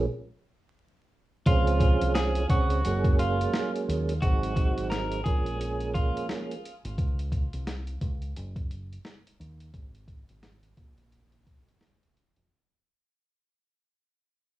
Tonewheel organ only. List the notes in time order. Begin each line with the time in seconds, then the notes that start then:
1.46 F3 G#3 C4 C#4 G#4
2.48 C#3 G#3 C4 C#4 G#4
2.85 F#3 G#3 A#3 C#4 G#4
4.22 F#3 G#3 C4 D#4 G#4
4.55 F#3 G#3 C4 D#4 G#4
5.25 F3 G#3 A#3 C#4 G#4
5.58 F3 G#3 A#3 C#4 G#4